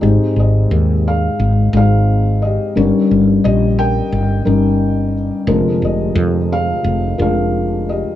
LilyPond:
<<
  \new Staff \with { instrumentName = "Felt piano" } { \time 4/4 \key aes \major \tempo 4 = 88 << { r8 <g' ees''>4 <aes' f''>4 <aes' f''>4 <g' ees''>8 | <g' des''>4 <g' ees''>8 <bes' g''>4. r4 | r8 <g' ees''>4 <aes' f''>4 <aes' f''>4 <g' ees''>8 | } \\ { <aes c' ees' g'>4. r4 <aes c' ees' aes'>4 r8 | <g des' ees' bes'>4. r4 <g des' ees' bes'>4 r8 | <d aes f' bes'>4. r4 <aes d' f' bes'>4 r8 | } >> }
  \new Staff \with { instrumentName = "Felt piano" } { \clef bass \time 4/4 \key aes \major <aes,, aes,>1 | <g,, g,>1 | <f,, f,>1 | }
  \new Staff \with { instrumentName = "Fretless electric bass" } { \clef bass \time 4/4 \key aes \major aes,,16 r16 aes,,8 ees,4 aes,,8 aes,,4. | g,,16 r16 g,,8 bes,,4 g,,8 g,,4. | f,,16 r16 f,,8 f,4 f,,8 f,,4. | }
>>